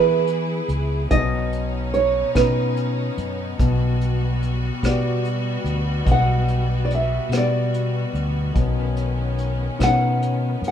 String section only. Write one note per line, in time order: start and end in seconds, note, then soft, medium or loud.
0.00 1.07 E3 medium
0.00 1.07 E4 medium
0.00 1.07 G#4 medium
0.00 1.07 B4 medium
1.10 10.71 B3 medium
1.10 3.56 C#4 medium
1.10 3.56 D#4 medium
3.59 8.52 G3 medium
3.59 8.51 F#4 medium
8.53 10.71 D#3 medium
8.53 10.71 C#4 medium